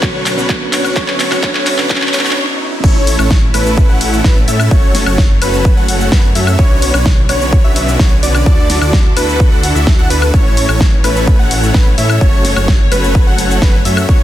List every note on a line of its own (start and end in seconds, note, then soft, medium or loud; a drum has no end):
0.00 0.35 B1 medium
0.00 0.02 D3 medium
0.00 0.35 D3 medium
0.00 0.02 F#3 medium
0.00 0.35 F#3 medium
0.00 0.03 B3 medium
0.00 0.35 B3 medium
0.00 0.39 C#4 medium
0.00 0.35 C#4 medium
0.00 0.35 D4 medium
0.00 0.35 F#4 medium
0.00 0.94 B4 medium
0.00 0.35 B4 medium
0.00 0.03 C#5 medium
0.00 0.35 C#5 loud
0.00 0.35 C#5 medium
0.00 2.34 F#5 medium
0.00 0.92 C#6 medium
0.00 kick loud
0.00 clap medium
0.00 riser medium
0.00 cabasa soft
0.26 clap medium
0.26 open hi-hat loud
0.26 cabasa medium
0.36 0.70 B1 medium
0.36 0.94 D3 medium
0.36 0.94 F#3 medium
0.36 0.95 B3 medium
0.36 0.51 C#4 medium
0.36 0.95 C#4 medium
0.36 0.51 D4 medium
0.36 0.51 F#4 medium
0.36 0.51 B4 medium
0.36 0.51 C#5 medium
0.36 cabasa soft
0.49 kick loud
0.49 clap medium
0.49 cabasa soft
0.73 0.94 B1 medium
0.73 0.94 C#4 medium
0.73 0.94 D4 medium
0.73 0.94 F#4 medium
0.73 0.94 B4 medium
0.73 0.94 C#5 medium
0.73 0.94 C#5 loud
0.73 clap medium
0.73 open hi-hat loud
0.73 cabasa medium
0.85 cabasa soft
0.85 high woodblock medium
0.96 1.29 D2 loud
0.96 1.28 D3 medium
0.96 1.28 F#3 medium
0.96 1.29 B3 medium
0.96 1.29 C#4 loud
0.96 1.29 D4 medium
0.96 1.29 F#4 medium
0.96 2.35 A4 medium
0.96 1.29 B4 medium
0.96 1.29 C#5 loud
0.96 1.29 C#5 medium
0.96 2.35 E5 medium
0.96 kick loud
0.96 clap loud
0.96 cabasa soft
1.08 clap medium
1.20 clap medium
1.20 open hi-hat loud
1.20 cabasa medium
1.30 1.41 D2 loud
1.30 1.41 D3 medium
1.30 1.41 F#3 medium
1.30 1.41 B3 medium
1.30 1.41 C#4 medium
1.30 1.42 C#4 loud
1.30 1.41 D4 medium
1.30 1.41 F#4 medium
1.30 1.41 B4 medium
1.30 1.41 C#5 medium
1.30 clap medium
1.30 cabasa soft
1.30 high woodblock medium
1.42 1.76 D2 loud
1.42 1.75 D3 medium
1.42 1.75 F#3 medium
1.42 1.75 B3 medium
1.42 1.75 C#4 loud
1.42 1.75 D4 medium
1.42 1.75 F#4 medium
1.42 1.75 B4 medium
1.42 1.75 C#5 loud
1.42 1.76 C#5 loud
1.42 kick loud
1.42 clap loud
1.42 cabasa soft
1.55 clap medium
1.67 clap loud
1.67 open hi-hat loud
1.67 cabasa medium
1.67 high woodblock medium
1.77 1.88 D2 loud
1.77 1.87 D3 medium
1.77 1.88 F#3 medium
1.77 1.88 B3 medium
1.77 1.88 C#4 medium
1.77 1.89 C#4 loud
1.77 1.88 D4 medium
1.77 1.88 F#4 medium
1.77 1.88 B4 medium
1.77 1.88 C#5 medium
1.77 clap medium
1.77 cabasa soft
1.89 2.11 D2 loud
1.89 2.11 D3 medium
1.89 2.11 F#3 medium
1.89 2.12 B3 medium
1.89 2.12 C#4 loud
1.89 2.12 D4 medium
1.89 2.12 F#4 medium
1.89 2.12 B4 medium
1.89 2.12 C#5 loud
1.89 kick loud
1.89 clap loud
1.89 cabasa soft
1.96 clap medium
2.02 clap medium
2.08 clap medium
2.13 2.35 D2 medium
2.13 2.35 D3 medium
2.13 2.35 F#3 medium
2.13 2.35 B3 medium
2.13 2.35 C#4 loud
2.13 2.35 C#4 medium
2.13 2.35 D4 medium
2.13 2.35 F#4 medium
2.13 2.35 B4 medium
2.13 2.35 C#5 loud
2.13 clap loud
2.13 open hi-hat loud
2.13 cabasa medium
2.19 clap medium
2.25 clap medium
2.25 cabasa soft
2.31 clap medium
2.84 3.17 A1 loud
2.84 3.16 A3 loud
2.84 6.55 A3 medium
2.84 3.16 C#4 medium
2.84 3.16 E4 medium
2.84 4.69 E4 medium
2.84 3.16 A4 loud
2.84 3.16 C#5 loud
2.84 8.42 C#5 medium
2.84 kick loud
2.84 crash loud
2.84 cabasa soft
3.07 open hi-hat loud
3.07 cabasa medium
3.19 3.52 A1 loud
3.19 3.32 A3 medium
3.19 3.32 C#4 medium
3.19 3.32 E4 medium
3.19 3.32 A4 medium
3.19 3.32 C#5 medium
3.19 cabasa soft
3.19 high woodblock medium
3.31 kick loud
3.31 snare loud
3.31 cabasa soft
3.54 3.87 A1 loud
3.54 3.86 A3 medium
3.54 3.86 C#4 medium
3.54 3.86 E4 medium
3.54 3.86 A4 medium
3.54 3.86 B4 loud
3.54 open hi-hat loud
3.54 cabasa medium
3.54 high woodblock medium
3.66 cabasa soft
3.78 kick loud
3.78 cabasa soft
3.89 4.22 A1 loud
3.89 4.22 A3 medium
3.89 4.22 C#4 medium
3.89 4.22 E4 medium
3.89 4.22 A4 medium
3.89 4.22 F#5 medium
4.01 open hi-hat loud
4.01 cabasa medium
4.13 cabasa soft
4.24 4.45 A1 loud
4.24 4.38 A3 medium
4.24 4.38 C#4 medium
4.24 4.38 E4 medium
4.24 4.38 A4 medium
4.24 4.38 B4 medium
4.24 kick loud
4.24 snare loud
4.24 cabasa soft
4.48 4.69 A2 loud
4.48 4.68 A3 medium
4.48 4.68 C#4 medium
4.48 4.68 E4 medium
4.48 4.68 A4 medium
4.48 4.68 E5 medium
4.48 open hi-hat loud
4.48 cabasa medium
4.60 cabasa soft
4.60 high woodblock medium
4.71 5.04 F#1 medium
4.71 6.57 F#3 medium
4.71 5.04 A3 loud
4.71 5.04 C#4 medium
4.71 5.04 F#4 medium
4.71 5.04 A4 medium
4.71 5.04 C#5 loud
4.71 kick loud
4.71 cabasa soft
4.95 snare medium
4.95 open hi-hat loud
4.95 cabasa medium
5.06 5.39 F#1 loud
5.06 5.20 A3 medium
5.06 5.20 C#4 medium
5.06 5.20 F#4 medium
5.06 5.20 A4 medium
5.06 5.20 C#5 medium
5.06 cabasa soft
5.06 high woodblock medium
5.18 kick loud
5.18 snare loud
5.18 cabasa soft
5.42 5.74 F#1 loud
5.42 5.74 A3 medium
5.42 5.74 C#4 medium
5.42 5.74 F#4 medium
5.42 5.74 A4 medium
5.42 5.74 B4 loud
5.42 open hi-hat loud
5.42 cabasa medium
5.42 high woodblock medium
5.54 cabasa soft
5.65 kick loud
5.65 cabasa soft
5.77 6.09 F#1 loud
5.77 6.09 A3 medium
5.77 6.09 C#4 medium
5.77 6.09 F#4 medium
5.77 6.09 A4 medium
5.77 6.09 F#5 medium
5.88 open hi-hat loud
5.88 cabasa medium
6.01 cabasa soft
6.12 6.33 F#2 loud
6.12 6.25 A3 medium
6.12 6.25 C#4 medium
6.12 6.25 F#4 medium
6.12 6.25 A4 medium
6.12 6.25 B4 medium
6.12 kick loud
6.12 snare loud
6.12 cabasa soft
6.35 6.56 F#2 loud
6.35 6.56 A3 medium
6.35 6.56 C#4 medium
6.35 6.56 F#4 medium
6.35 6.56 A4 medium
6.35 6.56 E5 medium
6.35 open hi-hat loud
6.35 cabasa medium
6.47 cabasa soft
6.47 high woodblock medium
6.59 6.92 B1 loud
6.59 10.30 D3 medium
6.59 8.44 B3 medium
6.59 6.91 C#4 loud
6.59 6.91 D4 medium
6.59 6.91 F#4 medium
6.59 6.91 B4 medium
6.59 6.91 C#5 loud
6.59 kick loud
6.59 cabasa soft
6.82 open hi-hat loud
6.82 cabasa medium
6.94 7.27 B1 loud
6.94 7.07 C#4 medium
6.94 7.07 D4 medium
6.94 7.07 F#4 medium
6.94 7.07 B4 medium
6.94 7.07 C#5 medium
6.94 cabasa soft
6.94 high woodblock medium
7.06 kick loud
7.06 snare loud
7.06 cabasa soft
7.29 7.62 B1 loud
7.29 7.61 C#4 medium
7.29 7.61 D4 medium
7.29 7.61 F#4 medium
7.29 7.61 B4 medium
7.29 7.61 C#5 loud
7.29 open hi-hat loud
7.29 cabasa medium
7.29 high woodblock medium
7.41 cabasa soft
7.53 kick loud
7.53 cabasa soft
7.64 7.97 B1 loud
7.64 7.97 C#4 medium
7.64 7.97 D4 medium
7.64 7.97 F#4 medium
7.64 7.97 B4 medium
7.64 7.97 E5 medium
7.76 open hi-hat loud
7.76 cabasa medium
7.88 cabasa soft
7.99 8.21 B1 loud
7.99 8.13 C#4 medium
7.99 8.13 D4 medium
7.99 8.13 F#4 medium
7.99 8.13 B4 medium
7.99 8.13 C#5 medium
7.99 kick loud
7.99 snare loud
7.99 cabasa soft
8.23 8.44 B1 loud
8.23 8.43 C#4 medium
8.23 8.43 D4 medium
8.23 8.43 F#4 medium
8.23 8.43 B4 medium
8.23 8.43 D5 medium
8.23 open hi-hat loud
8.23 cabasa medium
8.35 cabasa soft
8.35 high woodblock medium
8.46 8.79 D2 loud
8.46 10.32 D4 medium
8.46 8.79 D4 loud
8.46 10.32 E4 medium
8.46 8.79 E4 medium
8.46 10.32 F#4 medium
8.46 8.79 F#4 medium
8.46 8.79 A4 medium
8.46 10.32 A4 medium
8.46 8.79 D5 loud
8.46 kick loud
8.46 cabasa soft
8.70 snare medium
8.70 open hi-hat loud
8.70 cabasa medium
8.81 9.14 D2 loud
8.81 8.95 D4 medium
8.81 8.95 E4 medium
8.81 8.95 F#4 medium
8.81 8.95 A4 medium
8.81 8.95 D5 medium
8.81 cabasa soft
8.81 high woodblock medium
8.93 kick loud
8.93 snare loud
8.93 cabasa soft
9.16 9.49 D2 loud
9.16 9.49 D4 medium
9.16 9.49 E4 medium
9.16 9.49 F#4 medium
9.16 9.49 A4 medium
9.16 9.49 B4 loud
9.16 open hi-hat loud
9.16 cabasa medium
9.16 high woodblock medium
9.29 cabasa soft
9.40 kick loud
9.40 cabasa soft
9.52 9.73 D2 loud
9.52 9.73 D4 medium
9.52 9.73 E4 medium
9.52 9.73 F#4 medium
9.52 9.73 A4 medium
9.52 9.73 F#5 medium
9.63 open hi-hat loud
9.63 cabasa medium
9.75 9.96 D2 loud
9.75 9.89 D4 medium
9.75 9.89 E4 medium
9.75 9.89 F#4 medium
9.75 9.89 A4 medium
9.75 9.89 E5 medium
9.75 cabasa soft
9.87 kick loud
9.87 snare loud
9.87 cabasa soft
9.99 10.08 D2 loud
9.99 10.09 D4 medium
9.99 10.09 E4 medium
9.99 10.09 F#4 medium
9.99 10.09 A4 medium
9.99 10.09 F#5 loud
10.10 10.31 D2 loud
10.10 10.30 D4 medium
10.10 10.30 E4 medium
10.10 10.30 F#4 medium
10.10 10.30 A4 medium
10.10 10.30 B4 loud
10.10 open hi-hat loud
10.10 cabasa medium
10.22 cabasa soft
10.22 high woodblock medium
10.34 10.67 A1 medium
10.34 12.19 E3 medium
10.34 10.66 A3 loud
10.34 14.05 A3 medium
10.34 10.66 C#4 medium
10.34 10.66 E4 medium
10.34 10.66 A4 medium
10.34 10.66 C#5 loud
10.34 14.23 C#5 medium
10.34 kick loud
10.34 cabasa soft
10.57 open hi-hat loud
10.57 cabasa medium
10.69 11.02 A1 loud
10.69 10.82 A3 medium
10.69 10.82 C#4 medium
10.69 10.82 E4 medium
10.69 10.82 A4 medium
10.69 10.82 C#5 medium
10.69 cabasa soft
10.69 high woodblock medium
10.81 kick loud
10.81 snare loud
10.81 cabasa soft
11.04 11.37 A1 loud
11.04 11.36 A3 medium
11.04 11.36 C#4 medium
11.04 11.36 E4 medium
11.04 11.36 A4 medium
11.04 11.36 B4 loud
11.04 open hi-hat loud
11.04 cabasa medium
11.04 high woodblock medium
11.16 cabasa soft
11.28 kick loud
11.28 cabasa soft
11.39 11.72 A1 medium
11.39 11.72 A3 medium
11.39 11.72 C#4 medium
11.39 11.72 E4 medium
11.39 11.72 A4 medium
11.39 11.72 F#5 medium
11.51 open hi-hat loud
11.51 cabasa medium
11.63 cabasa soft
11.74 11.95 A1 loud
11.74 11.88 A3 medium
11.74 11.88 C#4 medium
11.74 11.88 E4 medium
11.74 11.88 A4 medium
11.74 11.88 B4 medium
11.74 kick loud
11.74 snare loud
11.74 cabasa soft
11.98 12.19 A2 loud
11.98 12.18 A3 medium
11.98 12.18 C#4 medium
11.98 12.18 E4 medium
11.98 12.18 A4 medium
11.98 12.18 E5 medium
11.98 open hi-hat loud
11.98 cabasa medium
12.10 cabasa soft
12.10 high woodblock medium
12.21 12.54 F#1 loud
12.21 14.07 F#3 medium
12.21 12.54 A3 loud
12.21 12.54 C#4 medium
12.21 12.54 F#4 medium
12.21 12.54 A4 medium
12.21 12.54 C#5 loud
12.21 kick loud
12.21 cabasa soft
12.45 snare medium
12.45 open hi-hat loud
12.45 cabasa medium
12.56 12.89 F#1 loud
12.56 12.70 A3 medium
12.56 12.70 C#4 medium
12.56 12.70 F#4 medium
12.56 12.70 A4 medium
12.56 12.70 C#5 medium
12.56 cabasa soft
12.56 high woodblock medium
12.68 kick loud
12.68 snare loud
12.68 cabasa soft
12.92 13.24 F#1 loud
12.92 13.24 A3 medium
12.92 13.24 C#4 medium
12.92 13.24 F#4 medium
12.92 13.24 A4 medium
12.92 13.24 B4 loud
12.92 open hi-hat loud
12.92 cabasa medium
12.92 high woodblock medium
13.04 cabasa soft
13.15 kick loud
13.15 cabasa soft
13.27 13.60 F#1 loud
13.27 13.59 A3 medium
13.27 13.59 C#4 medium
13.27 13.59 F#4 medium
13.27 13.59 A4 medium
13.27 13.59 F#5 medium
13.38 open hi-hat loud
13.38 cabasa medium
13.51 cabasa soft
13.62 13.83 F#1 loud
13.62 13.75 A3 medium
13.62 13.75 C#4 medium
13.62 13.75 F#4 medium
13.62 13.75 A4 medium
13.62 13.75 B4 medium
13.62 kick loud
13.62 snare loud
13.62 cabasa soft
13.85 14.06 F#2 loud
13.85 14.06 A3 medium
13.85 14.06 C#4 medium
13.85 14.06 F#4 medium
13.85 14.06 A4 medium
13.85 14.06 E5 medium
13.85 open hi-hat loud
13.85 cabasa medium
13.97 cabasa soft
13.97 high woodblock medium
14.09 14.23 B1 medium
14.09 14.23 D3 medium
14.09 14.23 B3 medium
14.09 14.23 C#4 loud
14.09 14.23 D4 medium
14.09 14.23 F#4 medium
14.09 14.23 B4 medium
14.09 14.23 C#5 loud
14.09 kick loud
14.09 cabasa soft